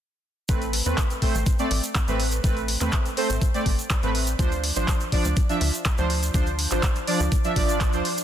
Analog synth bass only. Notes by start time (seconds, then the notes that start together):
0.49 A1
0.86 E2
1.35 A1
1.71 A1
2.08 A1
2.44 A1
2.81 E2
3.30 A1
3.66 A1
4.03 A1
4.39 D2
4.76 A1
5.25 D2
5.61 D2
5.98 D2
6.34 D2
6.71 A1
7.20 D2
7.56 A1
7.93 D2